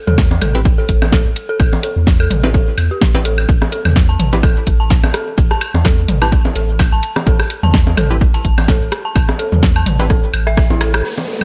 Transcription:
0.07 sub bass E2, synth bell A4, mid tom, ride
0.18 kick, snare, ride
0.31 low bongo
0.42 sub bass A1, synth bell A4, closed hi-hat, mid tom, ride, high woodblock
0.55 synth stab C4 E4 G4 B4, ride
0.65 kick, ride
0.78 synth bell A4
0.89 sub bass A1, kick, closed hi-hat, ride
1.02 low bongo, high woodblock
1.12 synth bell A4, kick, snare, ride
1.26 sub bass A1
1.36 closed hi-hat, ride
1.49 synth bell A4
1.60 sub bass A1, kick, ride, high woodblock
1.73 low bongo
1.83 synth bell A4, closed hi-hat, ride
1.96 sub bass E2
2.07 kick, snare, ride
2.20 synth bell A4, high woodblock
2.30 sub bass A1, closed hi-hat, mid tom, ride
2.43 synth stab C4 E4 G4 B4, snare, low bongo
2.54 synth bell A4, kick, ride
2.78 sub bass E2, snare, closed hi-hat, ride, high woodblock
2.91 synth bell G4
3.01 kick, snare, ride
3.15 sub bass A1, synth stab C4 E4 G4 B4, low bongo
3.25 synth bell A4, closed hi-hat, ride
3.38 high woodblock
3.49 sub bass A1, kick, ride, cabasa
3.62 cross-stick, low bongo, cabasa
3.72 synth bell A4, closed hi-hat, ride
3.85 sub bass E2, mid tom, ride, high woodblock
3.96 kick, snare, ride, cabasa
4.09 synth bell A5, cabasa
4.19 sub bass A1, closed hi-hat, mid tom, ride
4.33 synth stab C4 E4 G4 B4, ride, low bongo
4.43 synth bell A4, kick, ride, cabasa, high woodblock
4.56 cabasa
4.67 sub bass A1, kick, closed hi-hat, ride
4.80 synth bell A5, cabasa
4.90 kick, snare, ride, cabasa
5.03 sub bass A1, low bongo, cabasa, high woodblock
5.14 synth bell A4, cross-stick, closed hi-hat, ride
5.38 sub bass A1, kick, ride, cabasa
5.51 synth bell A5, cross-stick, cabasa
5.61 closed hi-hat, ride, high woodblock
5.74 sub bass E2, low bongo
5.85 synth bell A4, kick, snare, ride, cabasa
5.98 cabasa
6.08 sub bass A1, closed hi-hat, mid tom, ride
6.22 synth stab C4 E4 G4 B4, synth bell A5, snare, high woodblock
6.32 kick, ride, cabasa
6.45 low bongo, cabasa
6.56 sub bass A1, synth bell A4, snare, closed hi-hat, ride
6.69 cabasa
6.79 kick, snare, ride, cabasa, high woodblock
6.92 sub bass A1, synth bell A5, cabasa
7.03 closed hi-hat, ride
7.16 cross-stick, low bongo
7.26 sub bass A1, synth bell A4, kick, ride, cabasa
7.40 cross-stick, cabasa, high woodblock
7.50 closed hi-hat, ride
7.63 sub bass E2, synth bell A5, mid tom, ride
7.74 kick, snare, ride, cabasa
7.87 low bongo, cabasa
7.97 sub bass A1, synth bell A4, closed hi-hat, mid tom, ride, high woodblock
8.10 synth stab C4 E4 G4 B4
8.21 kick, ride, cabasa
8.34 synth bell A5, ride, cabasa
8.45 sub bass A1, kick, closed hi-hat
8.58 ride, low bongo, cabasa, high woodblock
8.68 synth bell A4, kick, snare, ride, cabasa
8.81 sub bass A1, cabasa
8.92 cross-stick, closed hi-hat, ride
9.05 synth bell A5
9.16 sub bass A1, kick, ride, cabasa, high woodblock
9.29 cross-stick, low bongo, cabasa
9.39 synth bell A4, closed hi-hat, ride
9.52 sub bass E2, mid tom, cabasa
9.63 kick, snare, ride, cabasa
9.76 synth bell A5, cabasa, high woodblock
9.86 sub bass A1, closed hi-hat, mid tom, ride
9.99 synth stab C4 E4 G4 B4, snare, low bongo, cabasa
10.10 synth bell A4, kick, cross-stick, ride, cabasa
10.23 cabasa
10.34 sub bass A1, closed hi-hat, ride, high woodblock
10.47 synth bell E5, cross-stick, cabasa
10.57 kick, cross-stick, snare, closed hi-hat, ride, cabasa
10.70 sub bass A1, synth bell E4, low bongo, cabasa
10.81 synth bell A4, cross-stick, snare, closed hi-hat, ride
10.94 synth bell A4, cross-stick, cabasa, high woodblock
11.04 sub bass A1, downlifter
11.18 low bongo
11.28 synth bell A4

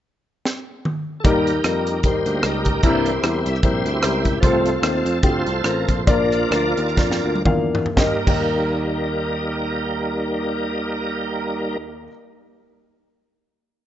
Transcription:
0.45 snare
0.85 mid tom
1.20 tonewheel organ G3 A4, upright piano G3
1.24 picked electric bass D#2, upright piano D#3 A#3 D#4 A#4, tonewheel organ A#3 D#4 G4 A#4, kick, closed hi-hat
1.47 closed hi-hat
1.64 picked electric bass F2, upright piano G3 A#3 D#4 A#4, cross-stick, closed hi-hat
1.87 closed hi-hat
2.03 picked electric bass D#2, upright piano G3 A#3 D#4 A#4, tonewheel organ D#4 G4 C5, kick, closed hi-hat
2.26 picked electric bass D2, tonewheel organ G3 A#3 D#4, closed hi-hat
2.43 picked electric bass C#2, upright piano G3 A#3 D#4 A#4, tonewheel organ D#4 G4 A#4, cross-stick, closed hi-hat
2.65 kick, closed hi-hat
2.83 picked electric bass C2, upright piano C3 G3 C4 E4 A#4, tonewheel organ E3 A#3 D4 E4 G4, kick, closed hi-hat
2.87 tonewheel organ C5
3.06 cross-stick, closed hi-hat
3.23 picked electric bass E2, upright piano G3 C4 E4 A#4, cross-stick, closed hi-hat
3.46 picked electric bass C2, tonewheel organ E5, closed hi-hat
3.55 cross-stick
3.63 picked electric bass A#1, upright piano G3 C4 E4 A#4, tonewheel organ E4 G4 C5, kick, closed hi-hat
3.86 picked electric bass D2, tonewheel organ E4 G4 C5, closed hi-hat
4.02 picked electric bass C#2, upright piano G3 C4 E4 A#4, cross-stick, closed hi-hat
4.25 kick, closed hi-hat
4.40 picked electric bass C2, upright piano C3 A3 C4 F4 C5, tonewheel organ F3 A3 C4 F4 A4, kick, closed hi-hat
4.66 cross-stick, closed hi-hat
4.82 picked electric bass D#2, upright piano A3 C4 F4 C5, cross-stick, closed hi-hat
5.05 picked electric bass F2, closed hi-hat
5.22 picked electric bass D2, upright piano A3 C4 F4 G4, tonewheel organ F4 A4 C5, kick, closed hi-hat
5.46 picked electric bass C2, closed hi-hat
5.64 picked electric bass A1, upright piano A3 C4 F4 C5, tonewheel organ A#4, cross-stick, closed hi-hat
5.88 picked electric bass A#1, tonewheel organ C5, kick, closed hi-hat
6.06 picked electric bass A#1, upright piano A#2 A#3 D4 F4 D5, tonewheel organ F3 A#3 D4 F4 A#4 D5, kick, closed hi-hat
6.32 cross-stick, closed hi-hat
6.51 picked electric bass D2, upright piano A#3 D4 F4 A#4, cross-stick, closed hi-hat
6.77 picked electric bass D#2, closed hi-hat
6.88 cross-stick
6.97 picked electric bass F2, upright piano A#3 D4 F4 D5, kick, snare
7.11 snare
7.25 picked electric bass D2
7.35 high tom
7.45 picked electric bass E2, upright piano A#3 D4 F4 F5, kick, mid tom
7.75 floor tom
7.86 floor tom
7.94 picked electric bass D#2, upright piano D#2 A#3 D#4 G4, tonewheel organ G3 A#3 D#4 A#4, kick, snare
8.00 upright piano D#5
8.24 picked electric bass D#2, upright piano D#2 A#3 D#4 G4, kick, crash
8.29 upright piano D#5

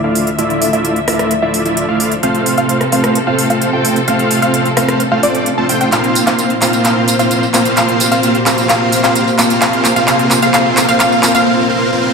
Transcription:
Already playing: string section D2 D3 F3 E5, riser
0.04 supersaw synth A3 E4 F4 D5 F5, synth pluck F5
0.15 open hi-hat
0.27 closed hi-hat
0.38 supersaw synth A3 E4 F4 D5 E5, synth pluck E5, closed hi-hat
0.50 closed hi-hat
0.62 open hi-hat
0.73 supersaw synth A3 E4 F4 D5 E5, synth pluck E5, closed hi-hat
0.85 closed hi-hat
0.96 closed hi-hat
1.08 supersaw synth A3 E4 F4 D5 E5, synth pluck E5, cross-stick, open hi-hat
1.19 cross-stick, closed hi-hat
1.31 closed hi-hat
1.42 supersaw synth A3 E4 F4 D5 E5, synth pluck E5
1.54 open hi-hat
1.65 supersaw synth A3 E4 F4 D5 E5, synth pluck E5, closed hi-hat
1.77 closed hi-hat
1.88 supersaw synth A3 E4 F4 D5 F5, synth pluck F5
2.00 open hi-hat
2.12 closed hi-hat
2.23 string section C3 C4 A4, supersaw synth A3 C4 F4 C5 F5, synth pluck F5, closed hi-hat
2.35 closed hi-hat
2.46 open hi-hat
2.58 supersaw synth A3 C4 F4 C5 F5, synth pluck F5, closed hi-hat
2.69 closed hi-hat
2.81 cross-stick, closed hi-hat
2.92 supersaw synth A3 C4 F4 C5 F5, synth pluck F5, open hi-hat
3.04 cross-stick, closed hi-hat
3.15 closed hi-hat
3.27 supersaw synth A3 C4 F4 C5 F5, synth pluck F5
3.39 open hi-hat
3.50 supersaw synth A3 C4 F4 C5 F5, synth pluck F5, closed hi-hat
3.62 closed hi-hat
3.73 supersaw synth A3 C4 F4 C5 G5, synth pluck G5
3.85 open hi-hat
3.96 closed hi-hat
4.08 supersaw synth A3 C4 F4 C5 F5, synth pluck F5, closed hi-hat
4.19 closed hi-hat
4.31 open hi-hat
4.42 supersaw synth A3 C4 F4 C5 F5, synth pluck F5, closed hi-hat
4.54 closed hi-hat
4.65 closed hi-hat
4.77 supersaw synth A3 C4 F4 C5 F5, synth pluck F5, cross-stick, open hi-hat
4.88 cross-stick, closed hi-hat
5.00 closed hi-hat
5.12 supersaw synth A3 C4 F4 C5 F5, synth pluck F5
5.23 supersaw synth A3 C4 F4 C5 D5, synth pluck D5, open hi-hat
5.35 closed hi-hat
5.46 closed hi-hat
5.58 supersaw synth A3 C4 F4 C5 A5, synth pluck A5
5.69 supersaw synth A3 C4 F4 C5 G5, synth pluck G5, open hi-hat
5.81 supersaw synth A3 C4 F4 C5 G5, synth pluck G5, closed hi-hat
5.92 string section A#2 A#3 C5, supersaw synth A#3 C4 F4 C5 F5, synth pluck F5, clap, closed hi-hat, tambourine
6.04 closed hi-hat
6.15 open hi-hat, tambourine
6.27 supersaw synth A#3 C4 F4 C5 F5, synth pluck F5, clap, closed hi-hat, tambourine
6.39 closed hi-hat, tambourine
6.50 closed hi-hat
6.62 supersaw synth A#3 C4 F4 C5 F5, synth pluck F5, clap, open hi-hat, tambourine
6.73 closed hi-hat, tambourine
6.85 supersaw synth A#3 C4 F4 C5 F5, synth pluck F5, clap, closed hi-hat, tambourine
7.08 open hi-hat, tambourine
7.19 supersaw synth A#3 C4 F4 C5 F5, synth pluck F5, closed hi-hat, tambourine
7.31 closed hi-hat, tambourine
7.43 tambourine
7.54 supersaw synth A#3 C4 F4 C5 F5, synth pluck F5, clap, open hi-hat, tambourine
7.65 closed hi-hat, tambourine
7.77 supersaw synth A#3 C4 F4 C5 F5, string section G4, synth pluck F5, clap, closed hi-hat, tambourine
7.88 closed hi-hat
8.00 open hi-hat, tambourine
8.12 supersaw synth A#3 C4 F4 C5 F5, synth pluck F5, closed hi-hat, tambourine
8.23 closed hi-hat, tambourine
8.35 closed hi-hat
8.46 supersaw synth A#3 C4 F4 C5 F5, synth pluck F5, clap, open hi-hat, tambourine
8.58 closed hi-hat, tambourine
8.69 supersaw synth A#3 C4 F4 C5 F5, synth pluck F5, clap, closed hi-hat, tambourine
8.92 open hi-hat, tambourine
9.04 supersaw synth A#3 C4 F4 C5 F5, synth pluck F5, clap, closed hi-hat, tambourine
9.15 closed hi-hat, tambourine
9.28 tambourine
9.39 supersaw synth A#3 C4 F4 C5 F5, synth pluck F5, clap, open hi-hat, tambourine
9.50 closed hi-hat, tambourine
9.62 string section C3 F4, supersaw synth A#3 C4 F4 C5 F5, synth pluck F5, clap, closed hi-hat, tambourine
9.73 closed hi-hat
9.85 clap, open hi-hat, tambourine
9.96 supersaw synth A#3 C4 F4 C5 F5, synth pluck F5, closed hi-hat, tambourine
10.08 supersaw synth A#3 C4 F4 C5 F5, synth pluck F5, clap, closed hi-hat, tambourine
10.19 closed hi-hat
10.31 clap, open hi-hat, tambourine
10.42 supersaw synth A#3 C4 F4 C5 F5, synth pluck F5, closed hi-hat, tambourine
10.54 supersaw synth A#3 C4 F4 C5 F5, synth pluck F5, clap, closed hi-hat, tambourine
10.77 clap, open hi-hat, tambourine
10.89 supersaw synth A#3 C4 F4 C5 F5, synth pluck F5, closed hi-hat, tambourine
11.00 supersaw synth A#3 C4 F4 C5 F5, synth pluck F5, clap, closed hi-hat, tambourine
11.12 tambourine
11.23 clap, open hi-hat, tambourine
11.35 supersaw synth A#3 C4 F4 C5 F5, synth pluck F5, closed hi-hat, tambourine
11.46 supersaw synth A#3 C4 F4 C5 F5
11.70 supersaw synth A#3 C4 F4 C5 F5
11.93 supersaw synth A#3 C4 F4 C5 F5

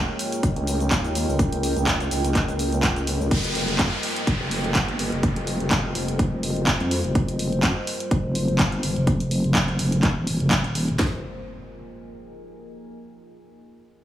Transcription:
Already playing: analog synth pad G#3 F4 C#5, ambient pad F4 A#4 D#5 G5
0.19 open hi-hat, shaker
0.32 closed hi-hat, shaker
0.43 kick, closed hi-hat, shaker
0.56 wobble bass C#2, closed hi-hat
0.67 open hi-hat, shaker
0.80 closed hi-hat, shaker
0.91 wobble bass D#2, kick, clap, closed hi-hat, shaker
1.04 closed hi-hat, shaker
1.15 open hi-hat, shaker
1.28 wobble bass C#2, shaker
1.39 kick, closed hi-hat, shaker
1.52 closed hi-hat
1.63 open hi-hat, shaker
1.76 wobble bass C#2, closed hi-hat, shaker
1.87 kick, clap, closed hi-hat, shaker
2.00 closed hi-hat, shaker
2.11 wobble bass C#2, open hi-hat, shaker
2.24 closed hi-hat, shaker
2.35 kick, clap, closed hi-hat, shaker
2.48 wobble bass C#2, closed hi-hat, shaker
2.59 open hi-hat, shaker
2.72 closed hi-hat, shaker
2.83 wobble bass C#2, kick, clap, closed hi-hat, shaker
2.96 closed hi-hat, shaker
3.07 open hi-hat, shaker
3.20 wobble bass C#2, shaker
3.31 wobble bass F1, analog synth pad G3 F4 C5, kick, closed hi-hat, crash, downlifter
3.44 closed hi-hat
3.55 open hi-hat
3.68 closed hi-hat
3.79 wobble bass F2, kick, clap, closed hi-hat
4.03 open hi-hat
4.16 closed hi-hat
4.27 kick, closed hi-hat
4.40 wobble bass F1
4.51 open hi-hat
4.64 closed hi-hat
4.75 wobble bass G1, kick, clap, closed hi-hat
4.88 closed hi-hat
4.99 open hi-hat
5.12 wobble bass F1, closed hi-hat
5.23 kick, closed hi-hat
5.36 closed hi-hat
5.47 open hi-hat
5.60 wobble bass F1, closed hi-hat
5.71 kick, clap, closed hi-hat
5.95 wobble bass F1, open hi-hat
6.08 closed hi-hat
6.19 kick, closed hi-hat
6.43 wobble bass F1, open hi-hat
6.56 closed hi-hat
6.67 kick, clap, closed hi-hat
6.80 wobble bass F2, closed hi-hat
6.91 open hi-hat
7.04 wobble bass F1, closed hi-hat
7.15 wobble bass F1, kick, closed hi-hat
7.28 closed hi-hat
7.39 open hi-hat
7.52 closed hi-hat
7.63 wobble bass F2, kick, clap, closed hi-hat
7.87 open hi-hat
8.00 closed hi-hat
8.11 kick, closed hi-hat
8.24 wobble bass F1
8.35 open hi-hat
8.48 closed hi-hat
8.59 wobble bass G1, kick, clap, closed hi-hat
8.72 closed hi-hat
8.83 open hi-hat
8.96 wobble bass F1, closed hi-hat
9.07 kick, closed hi-hat
9.20 closed hi-hat
9.31 open hi-hat
9.44 wobble bass F1, closed hi-hat
9.55 kick, clap, closed hi-hat
9.68 closed hi-hat
9.79 wobble bass F1, open hi-hat
9.92 closed hi-hat
10.03 wobble bass D#1, kick, clap, closed hi-hat
10.27 open hi-hat
10.40 wobble bass F1, closed hi-hat
10.51 kick, clap, closed hi-hat
10.64 wobble bass D#1, closed hi-hat
10.75 open hi-hat
10.88 closed hi-hat
10.99 wobble bass F1, analog synth pad G#3 F4 C5, ambient pad F4, kick, snare, clap, impact
11.07 ambient pad A#4
11.15 ambient pad D#5
11.21 ambient pad G#5

